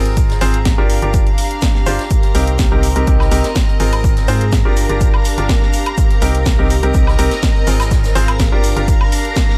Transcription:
Already playing: fm bass G#1, grand piano C4 F4 G#4 A#4, string section C4 G4 D#5 A#5
0.06 closed hi-hat
0.17 kick, closed hi-hat, shaker
0.26 string section G#4, snare, closed hi-hat
0.38 fm bass G#1, grand piano C4 F4 G#4 C5, string section F5, open hi-hat, shaker
0.54 closed hi-hat
0.65 kick, snare, closed hi-hat, shaker
0.78 fm bass G1, grand piano D4 F4 G4 A#4
0.90 string section D4, open hi-hat
1.02 fm bass G1, grand piano D4 F4 G4 A#4, closed hi-hat
1.14 kick, closed hi-hat, shaker
1.21 string section G4
1.27 closed hi-hat
1.38 open hi-hat, shaker
1.51 closed hi-hat
1.61 kick, snare, closed hi-hat, shaker
1.75 snare
1.86 fm bass G1, grand piano D4 F4 G4 C5, open hi-hat, shaker
1.99 snare, closed hi-hat
2.10 string section C4, string machine A#4 A#5, kick, closed hi-hat, shaker
2.23 closed hi-hat
2.35 fm bass C2, grand piano C4 D#4 G4 A#4, open hi-hat, shaker
2.47 closed hi-hat
2.59 kick, snare, closed hi-hat, shaker
2.72 fm bass C2, grand piano C4 D#4 G4 A#4
2.83 open hi-hat, shaker
2.96 fm bass C2, grand piano C4 D#4 G4 A#4, string section D#5, closed hi-hat
3.07 fm bass C2, grand piano C4 D#4 G4 A#4, kick, closed hi-hat, shaker
3.20 snare, high woodblock
3.31 fm bass C2, grand piano C4 D#4 G4 A#4, open hi-hat, shaker
3.43 snare, closed hi-hat
3.55 kick, snare, closed hi-hat, shaker
3.69 closed hi-hat
3.79 fm bass G#1, grand piano C4 F4 G#4 A#4, open hi-hat
3.93 closed hi-hat, high woodblock
4.04 kick, closed hi-hat, shaker
4.16 snare, closed hi-hat
4.28 fm bass G#2, grand piano C4 F4 G#4 C5, open hi-hat, shaker
4.37 string section G#4 F5, closed hi-hat
4.52 kick, snare, closed hi-hat, shaker
4.65 fm bass G1, grand piano D4 F4 G4 A#4
4.76 string section D4, open hi-hat, shaker
4.89 fm bass G1, grand piano D4 F4 G4 A#4, closed hi-hat
5.01 kick, closed hi-hat, shaker
5.11 string section G4, high woodblock
5.25 open hi-hat, shaker
5.38 fm bass G1, grand piano D4 F4 G4 A#4, closed hi-hat
5.49 kick, snare, closed hi-hat, shaker
5.62 snare
5.73 open hi-hat, shaker
5.86 closed hi-hat, high woodblock
5.97 string section C4, kick, closed hi-hat, shaker
6.11 closed hi-hat
6.22 fm bass C2, grand piano C4 D#4 G4 A#4, open hi-hat, shaker
6.35 closed hi-hat
6.46 kick, snare, closed hi-hat, shaker
6.59 fm bass C2, grand piano C4 D#4 G4 A#4
6.70 open hi-hat, shaker
6.83 fm bass C2, grand piano C4 D#4 G4 A#4, string section D#5, closed hi-hat
6.94 fm bass C2, grand piano C4 D#4 G4 A#4, kick, closed hi-hat, shaker
7.07 snare, high woodblock
7.19 fm bass C2, grand piano C4 D#4 G4 A#4, open hi-hat, shaker
7.31 snare, closed hi-hat
7.43 kick, snare, closed hi-hat, shaker
7.56 closed hi-hat
7.67 fm bass G#1, grand piano C4 F4 G#4 A#4, snare, open hi-hat, shaker
7.80 snare, closed hi-hat, high woodblock, shaker
7.91 kick, snare, closed hi-hat, shaker
8.04 snare, closed hi-hat, shaker
8.15 fm bass G#1, grand piano C4 F4 G#4 C5, open hi-hat, shaker
8.20 string section G#4
8.24 string section F5 A#5
8.28 closed hi-hat, high woodblock
8.39 kick, snare, closed hi-hat, shaker
8.52 fm bass G1, grand piano D4 F4 G4 A#4
8.64 string section D4, open hi-hat, shaker
8.76 fm bass G1, grand piano D4 F4 G4 A#4, closed hi-hat
8.88 kick, closed hi-hat, shaker
9.01 high woodblock
9.12 string section G4, open hi-hat, shaker
9.25 closed hi-hat
9.36 kick, snare, closed hi-hat, shaker
9.49 snare

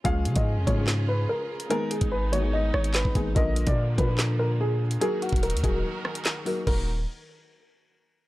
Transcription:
0.04 808-style bass C#2, string section C#3 C#4 F4 G#4, felt piano F3 G#3 C#4 F4 G#4, grand piano F5, kick, closed hi-hat
0.25 808-style bass C#3, closed hi-hat
0.36 808-style bass G#2, grand piano D#5, kick, closed hi-hat
0.57 808-style bass F2
0.66 808-style bass G#2, felt piano F3 G#3 C#4 F4 G#4, grand piano C#5, kick, closed hi-hat
0.76 felt piano F3 G#3 C#4 F4 G#4
0.87 snare, clap, closed hi-hat
1.09 grand piano B4
1.29 grand piano A#4
1.60 closed hi-hat
1.70 felt piano D#3 G#3 B3 D#4 G#4, string section G#3 B3 D#4, grand piano A#4, closed hi-hat
1.91 grand piano G#4, closed hi-hat
2.01 808-style bass G#1, kick, closed hi-hat
2.12 grand piano B4
2.32 felt piano D#3 G#3 B3 D#4 F#4, grand piano C#5, closed hi-hat
2.42 felt piano D#3 G#3 B3 D#4 G#4
2.53 grand piano D#5
2.74 808-style bass G#1, grand piano C#5, cross-stick
2.84 closed hi-hat
2.94 grand piano B4, snare, clap, closed hi-hat
3.05 808-style bass G#1, kick
3.15 808-style bass G#1, felt piano D#3 G#3 B3 D#4 G#4, kick, closed hi-hat
3.35 808-style bass A#1, felt piano D3 F3 A#3 F4 A#4, string section D3 F3 A#3, grand piano D#5, kick, closed hi-hat
3.56 closed hi-hat
3.67 808-style bass A#2, grand piano D5, kick, closed hi-hat
3.97 808-style bass A#2, felt piano F3 A#3 D4 F4 A#4, grand piano B4, kick, closed hi-hat
4.08 felt piano F3 A#3 D4 F4 A#4
4.18 snare, clap, closed hi-hat
4.39 grand piano A#4
4.61 grand piano G#4
4.91 closed hi-hat
5.00 string section D#3 D#4 F#4 A#4, felt piano F#3 A#3 D#4 F#4 A#4, grand piano G#4, closed hi-hat
5.22 grand piano F#4, closed hi-hat
5.29 808-style bass D#1, kick, closed hi-hat
5.36 closed hi-hat
5.43 grand piano A#4, closed hi-hat
5.50 808-style bass D#2, closed hi-hat
5.57 closed hi-hat
5.63 808-style bass D#1, felt piano F#3 A#3 D#4 F#4 G#4, grand piano A#4, kick, closed hi-hat
5.73 felt piano F#3 A#3 D#4 F#4 A#4
6.05 cross-stick
6.15 closed hi-hat
6.25 snare, clap, closed hi-hat
6.45 felt piano F#3 A#3 D#4 F#4 A#4, open hi-hat
6.67 808-style bass D#1, string section D#3 D#4 F#4 A#4, felt piano A#3 D#4 F#4 A#4, grand piano A#4, kick, crash

